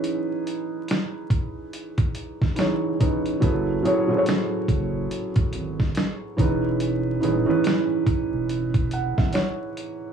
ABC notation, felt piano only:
X:1
M:4/4
L:1/16
Q:"Swing 16ths" 1/4=71
K:C#m
V:1 name="Felt piano"
[E,CDGB]4 z8 [E,CDGc] z [E,CDGB] z | [F,CEGAB] z [F,CEGAc] [F,CEGA^Bc]6 z4 z [E,CDG=B]2- | [E,CDGB] z [E,CDGB] [E,CDGB]6 z f e c4 |]